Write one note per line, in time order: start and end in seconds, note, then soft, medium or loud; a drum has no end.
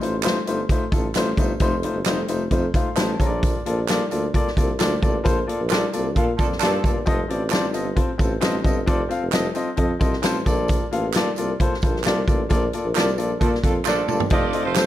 0.01 0.35 A1 medium
0.01 0.13 A3 medium
0.01 0.13 D#4 medium
0.01 0.13 F4 medium
0.01 0.14 C5 medium
0.01 closed hi-hat medium
0.01 tambourine soft
0.23 0.36 A3 loud
0.23 0.36 D#4 medium
0.23 0.36 F4 medium
0.23 0.36 C5 loud
0.23 snare medium
0.23 clap medium
0.23 closed hi-hat medium
0.23 tambourine medium
0.47 0.64 G1 medium
0.47 0.59 A3 medium
0.47 0.59 D#4 medium
0.47 0.59 F4 medium
0.47 0.59 C5 medium
0.47 closed hi-hat medium
0.47 tambourine medium
0.69 0.82 A3 medium
0.69 0.82 D#4 medium
0.69 0.82 F4 medium
0.69 0.82 C5 medium
0.69 kick medium
0.69 closed hi-hat medium
0.69 tambourine soft
0.82 0.86 A1 soft
0.91 1.09 A1 medium
0.91 1.04 A3 medium
0.91 1.04 D#4 medium
0.91 1.04 F4 medium
0.91 1.05 A4 medium
0.91 kick medium
0.91 closed hi-hat medium
0.91 tambourine soft
1.15 1.32 A1 medium
1.15 1.27 A3 medium
1.15 1.27 D#4 medium
1.15 1.28 F4 medium
1.15 1.28 C5 loud
1.15 snare loud
1.15 clap medium
1.15 closed hi-hat loud
1.15 tambourine medium
1.37 1.54 G1 medium
1.37 1.50 A3 medium
1.37 1.50 D#4 medium
1.37 1.50 F4 medium
1.37 1.50 C5 medium
1.37 kick medium
1.37 closed hi-hat medium
1.37 tambourine medium
1.60 1.86 F1 medium
1.60 1.73 A3 loud
1.60 1.73 D#4 loud
1.60 1.73 F4 medium
1.60 1.73 C5 loud
1.60 kick loud
1.60 closed hi-hat medium
1.60 tambourine medium
1.83 1.95 A3 medium
1.83 1.96 D#4 medium
1.83 1.96 F4 medium
1.83 1.96 C5 medium
1.83 closed hi-hat medium
1.93 2.06 G1 medium
2.04 2.22 F1 medium
2.04 2.18 A3 medium
2.04 2.18 D#4 loud
2.04 2.19 F4 medium
2.04 2.19 C5 loud
2.04 snare loud
2.04 clap medium
2.04 closed hi-hat medium
2.04 tambourine medium
2.28 2.46 F1 medium
2.28 2.41 A3 medium
2.28 2.41 D#4 medium
2.28 2.41 F4 medium
2.28 2.41 C5 medium
2.28 closed hi-hat medium
2.28 tambourine medium
2.51 2.68 F2 loud
2.51 2.63 A3 medium
2.51 2.64 D#4 medium
2.51 2.64 F4 medium
2.51 2.64 C5 medium
2.51 kick medium
2.51 closed hi-hat medium
2.51 tambourine soft
2.74 2.86 A3 medium
2.74 2.86 D#4 medium
2.74 2.87 F4 medium
2.74 2.87 C5 medium
2.74 2.96 F5 medium
2.74 kick medium
2.74 closed hi-hat medium
2.74 tambourine soft
2.96 3.14 A1 medium
2.96 3.08 A3 loud
2.96 3.09 D#4 medium
2.96 3.09 F4 medium
2.96 3.09 C5 loud
2.96 3.18 A5 medium
2.96 snare loud
2.96 clap medium
2.96 closed hi-hat loud
2.96 tambourine medium
3.19 3.54 A#1 medium
3.19 3.56 A#3 medium
3.19 3.57 F4 medium
3.19 3.57 A4 medium
3.19 3.26 C#5 medium
3.19 3.42 A#5 medium
3.19 kick medium
3.19 closed hi-hat medium
3.19 tambourine medium
3.26 3.60 D5 medium
3.43 kick loud
3.43 closed hi-hat medium
3.43 tambourine soft
3.66 4.00 A#1 medium
3.66 3.78 A#3 medium
3.66 3.78 F4 medium
3.66 3.78 A4 medium
3.66 3.78 D5 medium
3.66 closed hi-hat medium
3.88 4.00 A#3 loud
3.88 4.00 F4 loud
3.88 4.01 A4 medium
3.88 4.01 D5 loud
3.88 snare loud
3.88 clap medium
3.88 closed hi-hat medium
3.88 tambourine medium
4.10 4.28 D2 medium
4.10 4.22 A#3 medium
4.10 4.23 F4 medium
4.10 4.23 A4 medium
4.10 4.23 D5 medium
4.10 closed hi-hat medium
4.10 tambourine medium
4.34 4.46 A#3 medium
4.34 4.46 F4 medium
4.34 4.46 A4 medium
4.34 4.46 D5 medium
4.34 kick medium
4.34 closed hi-hat medium
4.34 tambourine soft
4.46 4.50 C2 soft
4.46 snare soft
4.56 4.74 C2 medium
4.56 4.68 A#3 medium
4.56 4.69 F4 medium
4.56 4.69 A4 medium
4.56 4.69 D5 medium
4.56 kick medium
4.56 closed hi-hat medium
4.56 tambourine soft
4.79 4.97 D2 medium
4.79 4.91 A#3 loud
4.79 4.91 F4 medium
4.79 4.91 A4 medium
4.79 4.92 D5 loud
4.79 snare loud
4.79 clap medium
4.79 closed hi-hat loud
4.79 tambourine medium
5.01 5.19 A1 medium
5.01 5.14 A#3 medium
5.01 5.14 F4 medium
5.01 5.14 A4 medium
5.01 5.14 D5 medium
5.01 kick medium
5.01 closed hi-hat medium
5.01 tambourine medium
5.23 5.42 A#1 medium
5.23 5.36 A#3 medium
5.23 5.36 F4 loud
5.23 5.36 A4 medium
5.23 5.37 C5 loud
5.23 kick medium
5.23 closed hi-hat medium
5.23 tambourine medium
5.47 5.59 A#3 medium
5.47 5.59 F4 medium
5.47 5.59 A4 medium
5.47 5.59 D5 medium
5.47 closed hi-hat medium
5.60 5.85 A#1 medium
5.70 5.77 F3 medium
5.70 5.77 A3 medium
5.70 5.82 A#3 medium
5.70 5.78 D4 medium
5.70 5.82 F4 medium
5.70 5.77 A4 medium
5.70 5.83 A4 medium
5.70 5.83 D5 loud
5.70 snare loud
5.70 clap medium
5.70 closed hi-hat medium
5.70 tambourine medium
5.93 6.18 C2 medium
5.93 6.05 A#3 medium
5.93 6.05 F4 medium
5.93 6.05 A4 medium
5.93 6.05 D5 medium
5.93 closed hi-hat medium
5.93 tambourine soft
6.15 6.33 A#2 medium
6.15 6.25 F3 medium
6.15 6.26 A3 medium
6.15 6.28 A#3 medium
6.15 6.26 D4 medium
6.15 6.28 F4 medium
6.15 6.26 A4 medium
6.15 6.28 A4 medium
6.15 6.28 F5 medium
6.15 kick medium
6.15 closed hi-hat medium
6.15 tambourine soft
6.37 6.56 F2 medium
6.37 6.47 F3 medium
6.37 6.47 A3 medium
6.37 6.50 A#3 medium
6.37 6.48 D4 medium
6.37 6.51 F4 medium
6.37 6.47 A4 medium
6.37 6.51 A4 medium
6.37 6.51 D5 medium
6.37 kick medium
6.37 closed hi-hat medium
6.37 tambourine medium
6.52 snare soft
6.59 6.78 G2 medium
6.59 6.93 F3 loud
6.59 6.93 A3 medium
6.59 6.73 A#3 loud
6.59 6.93 D4 medium
6.59 6.73 F4 medium
6.59 6.93 A4 loud
6.59 6.74 A4 medium
6.59 6.74 D5 loud
6.59 clap medium
6.59 closed hi-hat loud
6.59 tambourine medium
6.63 snare loud
6.84 7.01 G1 medium
6.84 6.96 A#3 medium
6.84 6.96 F4 medium
6.84 6.96 A4 medium
6.84 6.97 D5 medium
6.84 kick medium
6.84 closed hi-hat medium
6.84 tambourine medium
7.06 7.24 F1 medium
7.06 7.18 C4 loud
7.06 7.18 F4 medium
7.06 7.18 A4 loud
7.06 7.19 D#5 loud
7.06 kick loud
7.06 closed hi-hat medium
7.06 tambourine soft
7.28 7.76 A1 medium
7.28 7.41 C4 medium
7.28 7.41 F4 medium
7.28 7.41 A4 medium
7.28 7.41 D5 medium
7.28 closed hi-hat medium
7.50 7.63 C4 medium
7.50 7.63 F4 medium
7.50 7.63 A4 loud
7.50 7.64 D5 loud
7.50 snare medium
7.50 clap medium
7.50 closed hi-hat medium
7.50 tambourine medium
7.72 7.92 G1 medium
7.72 7.85 C4 medium
7.72 7.86 F4 medium
7.72 7.86 A4 medium
7.72 7.86 D#5 medium
7.72 closed hi-hat medium
7.72 tambourine medium
7.96 8.08 C4 medium
7.96 8.08 F4 medium
7.96 8.09 A4 medium
7.96 8.09 C5 medium
7.96 kick medium
7.96 closed hi-hat medium
7.96 tambourine soft
8.09 8.13 A1 soft
8.18 8.37 A1 medium
8.18 8.31 C4 medium
8.18 8.31 F4 medium
8.18 8.31 A4 medium
8.18 8.31 C5 medium
8.18 kick medium
8.18 closed hi-hat medium
8.18 tambourine soft
8.41 8.59 A1 medium
8.41 8.53 C4 loud
8.41 8.54 F4 medium
8.41 8.54 A4 medium
8.41 8.54 D#5 loud
8.41 snare loud
8.41 clap medium
8.41 closed hi-hat medium
8.41 tambourine medium
8.64 8.82 G1 medium
8.64 8.76 C4 medium
8.64 8.76 F4 medium
8.64 8.76 A4 medium
8.64 8.77 D#5 medium
8.64 kick medium
8.64 closed hi-hat medium
8.64 tambourine medium
8.86 9.05 F1 medium
8.86 8.99 C4 medium
8.86 8.99 F4 medium
8.86 9.00 A4 medium
8.86 8.99 D5 loud
8.86 kick loud
8.86 closed hi-hat medium
8.86 tambourine soft
9.09 9.21 C4 medium
9.09 9.22 F4 medium
9.09 9.22 A4 medium
9.09 9.22 F5 medium
9.09 closed hi-hat medium
9.09 tambourine soft
9.22 9.31 F1 medium
9.32 9.50 F1 medium
9.32 9.44 C4 loud
9.32 9.45 F4 medium
9.32 9.45 A4 medium
9.32 9.45 D#5 loud
9.32 snare loud
9.32 clap medium
9.32 closed hi-hat medium
9.32 tambourine medium
9.55 9.67 C4 medium
9.55 9.67 F4 medium
9.55 9.68 A4 medium
9.55 9.68 D#5 medium
9.55 closed hi-hat medium
9.55 tambourine medium
9.77 9.95 F2 medium
9.77 9.89 C4 medium
9.77 9.90 F4 medium
9.77 9.90 A4 medium
9.77 9.90 D#5 medium
9.77 kick medium
9.77 closed hi-hat medium
10.00 10.18 C2 medium
10.00 10.12 C4 medium
10.00 10.13 F4 medium
10.00 10.12 A4 medium
10.00 10.13 D#5 medium
10.00 kick medium
10.00 closed hi-hat medium
10.00 tambourine medium
10.13 snare soft
10.22 10.41 A1 medium
10.22 10.35 C4 loud
10.22 10.35 F4 medium
10.22 10.35 A4 medium
10.22 10.36 C5 loud
10.22 snare loud
10.22 clap medium
10.22 closed hi-hat loud
10.22 tambourine medium
10.45 10.80 A#1 medium
10.45 10.82 A#3 medium
10.45 10.83 F4 medium
10.45 10.83 A4 medium
10.45 10.83 D5 loud
10.45 kick medium
10.45 closed hi-hat medium
10.45 tambourine medium
10.68 kick medium
10.68 closed hi-hat medium
10.68 tambourine medium
10.91 11.25 A1 medium
10.91 11.03 A#3 medium
10.91 11.04 F4 medium
10.91 11.04 A4 medium
10.91 11.04 F5 medium
10.91 closed hi-hat medium
11.14 11.27 A#3 loud
11.14 11.27 F4 loud
11.14 11.27 A4 medium
11.14 11.27 D5 loud
11.14 snare medium
11.14 clap medium
11.14 closed hi-hat medium
11.14 tambourine medium
11.36 11.54 C2 medium
11.36 11.49 A#3 medium
11.36 11.49 F4 medium
11.36 11.49 A4 medium
11.36 11.49 D5 medium
11.36 closed hi-hat medium
11.36 tambourine medium
11.60 11.71 A#3 medium
11.60 11.72 F4 medium
11.60 11.72 A4 medium
11.60 11.72 C5 medium
11.60 kick medium
11.60 closed hi-hat medium
11.72 11.76 A#1 soft
11.72 snare soft
11.82 12.07 A#1 medium
11.82 11.94 A#3 medium
11.82 11.94 F4 medium
11.82 11.95 A4 medium
11.82 11.95 C5 medium
11.82 kick medium
11.82 closed hi-hat medium
11.82 tambourine medium
11.96 snare soft
12.04 12.22 C2 medium
12.04 12.17 A#3 medium
12.04 12.17 F4 medium
12.04 12.17 A4 medium
12.04 12.17 D5 loud
12.04 snare loud
12.04 clap medium
12.04 closed hi-hat loud
12.04 tambourine medium
12.27 12.44 A1 medium
12.27 12.39 A#3 medium
12.27 12.39 F4 medium
12.27 12.39 A4 medium
12.27 12.40 D5 medium
12.27 kick medium
12.27 closed hi-hat medium
12.27 tambourine medium
12.49 12.68 A#1 loud
12.49 12.61 A#3 loud
12.49 12.62 F4 medium
12.49 12.62 A4 medium
12.49 12.62 D5 loud
12.49 kick loud
12.49 closed hi-hat medium
12.49 tambourine soft
12.73 12.85 A#3 medium
12.73 12.85 F4 medium
12.73 12.85 A4 medium
12.73 12.85 D5 medium
12.73 closed hi-hat medium
12.73 tambourine soft
12.85 12.93 A#1 medium
12.95 13.20 C2 medium
12.95 13.03 F3 medium
12.95 13.03 A3 medium
12.95 13.07 A#3 loud
12.95 13.03 D4 medium
12.95 13.07 F4 loud
12.95 13.07 A4 medium
12.95 13.03 A4 medium
12.95 13.08 D5 loud
12.95 snare medium
12.95 clap medium
12.95 closed hi-hat medium
12.95 tambourine medium
13.17 13.35 A#1 medium
13.17 13.29 A#3 medium
13.17 13.29 F4 medium
13.17 13.30 A4 medium
13.17 13.30 D5 medium
13.17 closed hi-hat medium
13.17 tambourine medium
13.40 13.58 A#2 medium
13.40 13.51 F3 medium
13.40 13.50 A3 medium
13.40 13.52 A#3 medium
13.40 13.51 D4 medium
13.40 13.53 F4 medium
13.40 13.50 A4 medium
13.40 13.52 A4 medium
13.40 13.53 D5 medium
13.40 kick medium
13.40 closed hi-hat medium
13.40 tambourine soft
13.55 snare soft
13.63 13.80 F2 medium
13.63 13.73 F3 medium
13.63 13.73 A3 medium
13.63 13.75 A#3 medium
13.63 13.73 D4 medium
13.63 13.75 F4 medium
13.63 13.75 A4 medium
13.63 13.73 A4 medium
13.63 13.75 F5 medium
13.63 kick medium
13.63 closed hi-hat medium
13.63 tambourine soft
13.85 14.02 A#1 medium
13.85 14.18 F3 medium
13.85 14.18 A3 medium
13.85 13.97 A#3 medium
13.85 14.18 D4 medium
13.85 13.97 F4 medium
13.85 14.18 A4 medium
13.85 13.98 A4 medium
13.85 13.98 D5 loud
13.85 snare medium
13.85 clap medium
13.85 tambourine medium
14.08 14.25 G1 medium
14.08 14.20 A#3 medium
14.08 14.20 F4 medium
14.08 14.20 A4 medium
14.08 14.21 D5 medium
14.08 mid tom medium
14.08 tambourine medium
14.20 floor tom medium
14.30 14.48 F1 loud
14.30 14.63 A3 medium
14.30 14.86 A3 medium
14.30 14.43 C4 loud
14.30 14.63 D4 medium
14.30 14.86 D#4 medium
14.30 14.43 F4 medium
14.30 14.63 F4 loud
14.30 14.86 F4 medium
14.30 14.43 A4 loud
14.30 14.63 D5 loud
14.30 14.43 D#5 loud
14.30 kick loud
14.30 closed hi-hat medium
14.30 tambourine soft
14.53 14.65 C4 medium
14.53 14.65 F4 medium
14.53 14.66 A4 medium
14.53 14.66 D#5 medium
14.53 closed hi-hat medium
14.65 14.86 F1 medium
14.65 14.74 A3 medium
14.65 14.74 C4 medium
14.65 14.74 F4 medium
14.65 14.74 C5 medium
14.75 14.86 A3 medium
14.75 14.86 C4 medium
14.75 14.86 F4 medium
14.75 14.86 A4 medium
14.75 14.86 C5 medium
14.75 14.86 C5 loud
14.75 snare loud
14.75 clap medium
14.75 closed hi-hat loud
14.75 tambourine loud